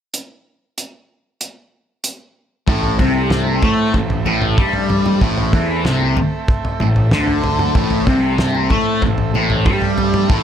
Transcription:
0.14 closed hi-hat
0.78 closed hi-hat
1.41 closed hi-hat
2.04 closed hi-hat
2.67 A1 A2 A3 C4 A4 E5, kick, floor tom
2.83 floor tom
2.99 C2 C3, kick, mid tom, high conga
3.30 snare, floor tom
3.47 high conga
3.62 A2 A3, kick, floor tom, low conga
3.94 A1 A2, kick, floor tom
4.10 floor tom
4.26 A1 A2, high conga, low conga
4.42 floor tom
4.58 G2 G3, kick, floor tom, mid tom
4.73 floor tom
4.89 floor tom, low conga
5.06 mid tom, high conga
5.21 A1 A2, kick, floor tom
5.38 floor tom
5.53 E2 E3, kick, mid tom, high conga
5.85 C2 C3, snare, floor tom
6.01 high conga
6.17 floor tom, low conga
6.48 kick, floor tom
6.65 floor tom
6.80 A1 A2, mid tom, high conga
6.96 floor tom
7.11 D2 D3, snare, floor tom, mid tom
7.27 floor tom
7.43 floor tom, low conga
7.59 mid tom, high conga
7.75 A1 A2, kick, floor tom
7.90 floor tom
8.07 C2 C3, kick, mid tom, high conga
8.38 snare, floor tom
8.55 high conga
8.70 A2 A3, kick, floor tom, low conga
9.02 A1 A2, kick, floor tom
9.18 floor tom
9.34 A1 A2, high conga, low conga
9.50 floor tom
9.66 G2 G3, kick, floor tom, mid tom
9.82 floor tom
9.98 floor tom, low conga
10.14 mid tom, high conga
10.30 A1 A2, kick, floor tom

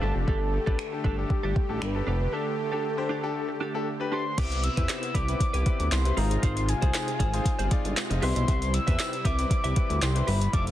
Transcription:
Already playing: A3
0.02 G1 D3 D4 G4 A4 A5
0.15 F1, muted clean electric guitar stroke
0.27 G1 D4 G4 A4, kick
0.41 muted clean electric guitar stroke
0.53 muted clean electric guitar stroke
0.66 A1 D4 G4 A4 B4, kick
0.79 finger snap
0.92 D4 G4 A4, muted clean electric guitar stroke
1.04 G1 D4 G4 A4, kick
1.18 D4 G4 A4, muted clean electric guitar stroke
1.30 G4, muted clean electric guitar stroke, kick
1.43 G1 D4 G4 A4
1.56 muted clean electric guitar stroke, kick
1.69 A1 D4 G4 A4, muted clean electric guitar stroke
1.81 G1 B4, finger snap
1.95 D4 G4 A4, muted clean electric guitar stroke
2.07 F1 D4 G4 A4
2.21 muted clean electric guitar stroke
2.32 D4 G4 A4
2.46 muted clean electric guitar stroke
2.58 muted clean electric guitar stroke
2.72 D4 G4 A4
2.97 D4 G4 C5, muted clean electric guitar stroke
3.09 D4 G4 A4
3.23 D4 G4 A4, muted clean electric guitar stroke
3.49 muted clean electric guitar stroke
3.61 D4 G4 A4
3.74 D4 G4 A4, muted clean electric guitar stroke
4.00 D4 G4 B4, muted clean electric guitar stroke
4.12 D4 G4 A4 C6
4.26 muted clean electric guitar stroke
4.37 C2 C3 B3 C4 E4 G4 B4 D6, kick, closed hi-hat, crash
4.51 muted clean electric guitar stroke, closed hi-hat
4.63 E6, muted clean electric guitar stroke, closed hi-hat
4.77 E2 C4 E4 G4 B4, kick, closed hi-hat
4.89 E6, snare, clap, closed hi-hat, tambourine
5.03 muted clean electric guitar stroke, closed hi-hat
5.14 C2 E4 G4 B4 D6, kick, closed hi-hat
5.28 C4 E4 G4 B4, muted clean electric guitar stroke, closed hi-hat
5.40 muted clean electric guitar stroke, kick, closed hi-hat
5.53 C2 E4 G4 B4, closed hi-hat
5.66 C4 E4 G4 B4, kick, closed hi-hat
5.79 D2, muted clean electric guitar stroke, closed hi-hat
5.92 C2 C6, snare, clap, closed hi-hat, tambourine
6.05 C4 E4 G4 B4, muted clean electric guitar stroke, closed hi-hat
6.17 G#1 G#3 D#4 F4 G#4 C5 A#5, open hi-hat
6.31 muted clean electric guitar stroke, closed hi-hat
6.42 G#1 F4 G#4 C5 C6, kick, closed hi-hat
6.56 muted clean electric guitar stroke, closed hi-hat
6.68 G#5, muted clean electric guitar stroke, closed hi-hat
6.82 C2 D#4 F4 G#4 C5, kick, closed hi-hat
6.94 snare, clap, closed hi-hat, tambourine
7.08 muted clean electric guitar stroke, closed hi-hat
7.19 G#1 F4 G#4 C5, kick, closed hi-hat
7.33 D#4 F4 G#4 C5, muted clean electric guitar stroke, closed hi-hat
7.45 muted clean electric guitar stroke, kick, closed hi-hat
7.59 G1 F4 G#4 C5, closed hi-hat
7.71 D#4 F4 G#4 D5, muted clean electric guitar stroke, kick, closed hi-hat
7.84 G1, muted clean electric guitar stroke, closed hi-hat
7.97 snare, clap, closed hi-hat, tambourine
8.10 F1 D#4 F4 G#4 D#5, muted clean electric guitar stroke, closed hi-hat
8.22 C2 G3 B3 C4 E4 G4 B4 E5 C6, open hi-hat
8.36 B1, muted clean electric guitar stroke, closed hi-hat
8.48 C2 G4 B4 E5, kick, closed hi-hat
8.61 muted clean electric guitar stroke, closed hi-hat
8.73 E6, muted clean electric guitar stroke, closed hi-hat
8.87 E2 C4 E4 G4 B4 E5, kick, closed hi-hat
8.99 snare, clap, closed hi-hat, tambourine
9.13 muted clean electric guitar stroke, closed hi-hat
9.25 C2 G4 B4 E5 D6, kick, closed hi-hat
9.38 C4 E4 G4 B4, muted clean electric guitar stroke, closed hi-hat
9.50 muted clean electric guitar stroke, kick, closed hi-hat
9.64 C2 G4 B4 E5, closed hi-hat
9.76 C4 E4 G4 B4, muted clean electric guitar stroke, kick, closed hi-hat
9.90 D2, muted clean electric guitar stroke, closed hi-hat
10.02 C2 C6, snare, clap, closed hi-hat, tambourine
10.15 C4 E4 G4 B4, muted clean electric guitar stroke, closed hi-hat
10.27 G1 G4 B4 E5 B5, open hi-hat
10.41 muted clean electric guitar stroke, closed hi-hat
10.53 F1 A3 C4 E4 F4 A4 E5 D6, kick, closed hi-hat
10.67 muted clean electric guitar stroke, closed hi-hat

